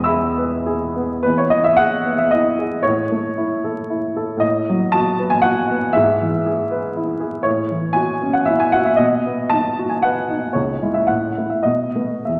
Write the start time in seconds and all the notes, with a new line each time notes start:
Already playing: E1 E2 G#3 D#5 B5 D#6
0.04 G#4 E5 B5 E6
0.37 B4
0.66 G#4
0.96 B3
1.23 E2 B4
1.38 C#5
1.50 E3 D#5
1.64 E5
1.77 G#4 F#5
2.06 B3
2.18 E5
2.31 E4 D#5
2.59 G#4
2.83 A2 C#5
3.12 A3
3.38 E4
3.64 A4
3.90 E4
4.16 A4
4.37 A2 D#5
4.69 F#3
4.92 F#4 A5
5.19 B4
5.30 G#5
5.42 F#4 F#5
5.71 B3
5.93 G#2 E5
6.21 E3
6.46 G#4
6.71 B4
6.96 E4
7.20 G#4
7.43 A2 C#5
7.71 E3
7.93 F#4 G#5
8.22 C#4
8.33 F#5
8.45 E4 E5
8.60 G#5
8.72 F#4 F#5
8.85 E5
8.96 B2 D#5
9.26 B3
9.49 D#4 A5
9.78 F#4
9.89 G#5
10.02 B4 F#5
10.30 D#4
10.53 C#2 C#5
10.82 G#3 E4
10.94 E5
11.07 A2 F#5
11.37 A3 E4
11.50 E5
11.63 B2 D#5
11.95 A3 B3
12.25 E2 E5